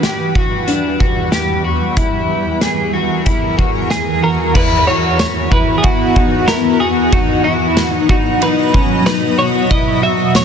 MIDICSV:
0, 0, Header, 1, 5, 480
1, 0, Start_track
1, 0, Tempo, 645161
1, 1464, Time_signature, 4, 2, 24, 8
1, 7774, End_track
2, 0, Start_track
2, 0, Title_t, "Clean electric guitar"
2, 0, Program_c, 0, 27
2, 2910, Note_on_c, 0, 68, 73
2, 3152, Note_on_c, 0, 70, 73
2, 3154, Note_off_c, 0, 68, 0
2, 3372, Note_off_c, 0, 70, 0
2, 3396, Note_on_c, 0, 71, 96
2, 3613, Note_off_c, 0, 71, 0
2, 3626, Note_on_c, 0, 73, 83
2, 3858, Note_off_c, 0, 73, 0
2, 3867, Note_on_c, 0, 73, 87
2, 4106, Note_off_c, 0, 73, 0
2, 4109, Note_on_c, 0, 71, 77
2, 4297, Note_off_c, 0, 71, 0
2, 4300, Note_on_c, 0, 68, 64
2, 4345, Note_on_c, 0, 66, 88
2, 4348, Note_off_c, 0, 68, 0
2, 4819, Note_on_c, 0, 70, 98
2, 4839, Note_off_c, 0, 66, 0
2, 5057, Note_off_c, 0, 70, 0
2, 5060, Note_on_c, 0, 68, 94
2, 5303, Note_on_c, 0, 66, 95
2, 5309, Note_off_c, 0, 68, 0
2, 5534, Note_off_c, 0, 66, 0
2, 5537, Note_on_c, 0, 64, 83
2, 5887, Note_off_c, 0, 64, 0
2, 5887, Note_on_c, 0, 63, 83
2, 6025, Note_off_c, 0, 63, 0
2, 6028, Note_on_c, 0, 66, 83
2, 6269, Note_on_c, 0, 71, 85
2, 6273, Note_off_c, 0, 66, 0
2, 6717, Note_off_c, 0, 71, 0
2, 6745, Note_on_c, 0, 71, 103
2, 6981, Note_off_c, 0, 71, 0
2, 6984, Note_on_c, 0, 73, 105
2, 7223, Note_off_c, 0, 73, 0
2, 7226, Note_on_c, 0, 75, 120
2, 7461, Note_off_c, 0, 75, 0
2, 7464, Note_on_c, 0, 76, 98
2, 7704, Note_off_c, 0, 76, 0
2, 7707, Note_on_c, 0, 73, 102
2, 7774, Note_off_c, 0, 73, 0
2, 7774, End_track
3, 0, Start_track
3, 0, Title_t, "Clean electric guitar"
3, 0, Program_c, 1, 27
3, 25, Note_on_c, 1, 67, 60
3, 260, Note_off_c, 1, 67, 0
3, 263, Note_on_c, 1, 66, 62
3, 502, Note_on_c, 1, 62, 80
3, 504, Note_off_c, 1, 66, 0
3, 742, Note_on_c, 1, 66, 61
3, 743, Note_off_c, 1, 62, 0
3, 978, Note_off_c, 1, 66, 0
3, 981, Note_on_c, 1, 67, 72
3, 1220, Note_off_c, 1, 67, 0
3, 1223, Note_on_c, 1, 66, 58
3, 1462, Note_off_c, 1, 66, 0
3, 1465, Note_on_c, 1, 64, 88
3, 1942, Note_off_c, 1, 64, 0
3, 1945, Note_on_c, 1, 68, 58
3, 2180, Note_off_c, 1, 68, 0
3, 2183, Note_on_c, 1, 66, 61
3, 2421, Note_off_c, 1, 66, 0
3, 2424, Note_on_c, 1, 64, 70
3, 2659, Note_off_c, 1, 64, 0
3, 2662, Note_on_c, 1, 66, 61
3, 2901, Note_off_c, 1, 66, 0
3, 2904, Note_on_c, 1, 68, 62
3, 3139, Note_off_c, 1, 68, 0
3, 3142, Note_on_c, 1, 66, 62
3, 3378, Note_off_c, 1, 66, 0
3, 3381, Note_on_c, 1, 64, 93
3, 3618, Note_off_c, 1, 64, 0
3, 3621, Note_on_c, 1, 66, 73
3, 4095, Note_off_c, 1, 66, 0
3, 4098, Note_on_c, 1, 64, 78
3, 4328, Note_off_c, 1, 64, 0
3, 4337, Note_on_c, 1, 64, 87
3, 4578, Note_on_c, 1, 63, 67
3, 4581, Note_off_c, 1, 64, 0
3, 4819, Note_on_c, 1, 64, 74
3, 4821, Note_off_c, 1, 63, 0
3, 5057, Note_off_c, 1, 64, 0
3, 5060, Note_on_c, 1, 66, 75
3, 5298, Note_on_c, 1, 63, 100
3, 5302, Note_off_c, 1, 66, 0
3, 5538, Note_on_c, 1, 66, 82
3, 5541, Note_off_c, 1, 63, 0
3, 6019, Note_on_c, 1, 63, 74
3, 6021, Note_off_c, 1, 66, 0
3, 6250, Note_off_c, 1, 63, 0
3, 6259, Note_on_c, 1, 63, 83
3, 6495, Note_off_c, 1, 63, 0
3, 6498, Note_on_c, 1, 61, 77
3, 6735, Note_off_c, 1, 61, 0
3, 6738, Note_on_c, 1, 63, 77
3, 6977, Note_on_c, 1, 66, 76
3, 6981, Note_off_c, 1, 63, 0
3, 7217, Note_off_c, 1, 66, 0
3, 7220, Note_on_c, 1, 64, 93
3, 7452, Note_off_c, 1, 64, 0
3, 7455, Note_on_c, 1, 66, 78
3, 7774, Note_off_c, 1, 66, 0
3, 7774, End_track
4, 0, Start_track
4, 0, Title_t, "Ambient pad"
4, 0, Program_c, 2, 92
4, 0, Note_on_c, 2, 40, 67
4, 0, Note_on_c, 2, 52, 66
4, 0, Note_on_c, 2, 55, 65
4, 0, Note_on_c, 2, 71, 85
4, 1434, Note_off_c, 2, 52, 0
4, 1434, Note_off_c, 2, 71, 0
4, 1449, Note_off_c, 2, 55, 0
4, 1464, Note_on_c, 2, 52, 68
4, 1467, Note_on_c, 2, 70, 77
4, 1471, Note_on_c, 2, 68, 61
4, 3357, Note_off_c, 2, 40, 0
4, 3365, Note_off_c, 2, 52, 0
4, 3366, Note_off_c, 2, 70, 0
4, 3368, Note_off_c, 2, 68, 0
4, 3384, Note_on_c, 2, 59, 81
4, 3385, Note_on_c, 2, 52, 67
4, 3387, Note_on_c, 2, 66, 70
4, 3390, Note_on_c, 2, 40, 84
4, 5285, Note_off_c, 2, 59, 0
4, 5286, Note_off_c, 2, 52, 0
4, 5286, Note_off_c, 2, 66, 0
4, 5288, Note_off_c, 2, 40, 0
4, 5305, Note_on_c, 2, 75, 78
4, 5305, Note_on_c, 2, 82, 89
4, 5307, Note_on_c, 2, 47, 79
4, 5308, Note_on_c, 2, 54, 69
4, 7205, Note_off_c, 2, 75, 0
4, 7205, Note_off_c, 2, 82, 0
4, 7206, Note_off_c, 2, 47, 0
4, 7207, Note_off_c, 2, 54, 0
4, 7218, Note_on_c, 2, 40, 87
4, 7218, Note_on_c, 2, 59, 73
4, 7219, Note_on_c, 2, 52, 69
4, 7222, Note_on_c, 2, 66, 91
4, 7774, Note_off_c, 2, 40, 0
4, 7774, Note_off_c, 2, 52, 0
4, 7774, Note_off_c, 2, 59, 0
4, 7774, Note_off_c, 2, 66, 0
4, 7774, End_track
5, 0, Start_track
5, 0, Title_t, "Drums"
5, 24, Note_on_c, 9, 38, 81
5, 25, Note_on_c, 9, 42, 63
5, 99, Note_off_c, 9, 38, 0
5, 99, Note_off_c, 9, 42, 0
5, 263, Note_on_c, 9, 36, 78
5, 337, Note_off_c, 9, 36, 0
5, 503, Note_on_c, 9, 42, 71
5, 577, Note_off_c, 9, 42, 0
5, 747, Note_on_c, 9, 36, 66
5, 821, Note_off_c, 9, 36, 0
5, 983, Note_on_c, 9, 38, 92
5, 985, Note_on_c, 9, 42, 69
5, 1057, Note_off_c, 9, 38, 0
5, 1060, Note_off_c, 9, 42, 0
5, 1463, Note_on_c, 9, 42, 65
5, 1465, Note_on_c, 9, 36, 83
5, 1538, Note_off_c, 9, 42, 0
5, 1539, Note_off_c, 9, 36, 0
5, 1945, Note_on_c, 9, 38, 85
5, 1945, Note_on_c, 9, 42, 71
5, 2019, Note_off_c, 9, 38, 0
5, 2019, Note_off_c, 9, 42, 0
5, 2424, Note_on_c, 9, 42, 67
5, 2428, Note_on_c, 9, 36, 80
5, 2499, Note_off_c, 9, 42, 0
5, 2503, Note_off_c, 9, 36, 0
5, 2668, Note_on_c, 9, 36, 73
5, 2743, Note_off_c, 9, 36, 0
5, 2905, Note_on_c, 9, 38, 88
5, 2908, Note_on_c, 9, 42, 69
5, 2980, Note_off_c, 9, 38, 0
5, 2983, Note_off_c, 9, 42, 0
5, 3386, Note_on_c, 9, 36, 104
5, 3386, Note_on_c, 9, 49, 91
5, 3460, Note_off_c, 9, 49, 0
5, 3461, Note_off_c, 9, 36, 0
5, 3863, Note_on_c, 9, 54, 72
5, 3865, Note_on_c, 9, 38, 108
5, 3865, Note_on_c, 9, 51, 65
5, 3938, Note_off_c, 9, 54, 0
5, 3940, Note_off_c, 9, 38, 0
5, 3940, Note_off_c, 9, 51, 0
5, 4104, Note_on_c, 9, 36, 84
5, 4178, Note_off_c, 9, 36, 0
5, 4342, Note_on_c, 9, 51, 66
5, 4346, Note_on_c, 9, 36, 107
5, 4416, Note_off_c, 9, 51, 0
5, 4420, Note_off_c, 9, 36, 0
5, 4585, Note_on_c, 9, 36, 83
5, 4659, Note_off_c, 9, 36, 0
5, 4818, Note_on_c, 9, 54, 62
5, 4820, Note_on_c, 9, 38, 122
5, 4822, Note_on_c, 9, 51, 65
5, 4892, Note_off_c, 9, 54, 0
5, 4894, Note_off_c, 9, 38, 0
5, 4897, Note_off_c, 9, 51, 0
5, 5300, Note_on_c, 9, 51, 70
5, 5301, Note_on_c, 9, 36, 107
5, 5375, Note_off_c, 9, 51, 0
5, 5376, Note_off_c, 9, 36, 0
5, 5778, Note_on_c, 9, 54, 64
5, 5780, Note_on_c, 9, 38, 124
5, 5780, Note_on_c, 9, 51, 63
5, 5853, Note_off_c, 9, 54, 0
5, 5855, Note_off_c, 9, 38, 0
5, 5855, Note_off_c, 9, 51, 0
5, 6021, Note_on_c, 9, 36, 89
5, 6096, Note_off_c, 9, 36, 0
5, 6262, Note_on_c, 9, 51, 73
5, 6336, Note_off_c, 9, 51, 0
5, 6505, Note_on_c, 9, 36, 76
5, 6579, Note_off_c, 9, 36, 0
5, 6741, Note_on_c, 9, 54, 58
5, 6743, Note_on_c, 9, 38, 118
5, 6746, Note_on_c, 9, 51, 66
5, 6816, Note_off_c, 9, 54, 0
5, 6817, Note_off_c, 9, 38, 0
5, 6820, Note_off_c, 9, 51, 0
5, 7223, Note_on_c, 9, 36, 96
5, 7225, Note_on_c, 9, 51, 61
5, 7297, Note_off_c, 9, 36, 0
5, 7299, Note_off_c, 9, 51, 0
5, 7699, Note_on_c, 9, 54, 63
5, 7701, Note_on_c, 9, 38, 116
5, 7701, Note_on_c, 9, 51, 59
5, 7773, Note_off_c, 9, 54, 0
5, 7774, Note_off_c, 9, 38, 0
5, 7774, Note_off_c, 9, 51, 0
5, 7774, End_track
0, 0, End_of_file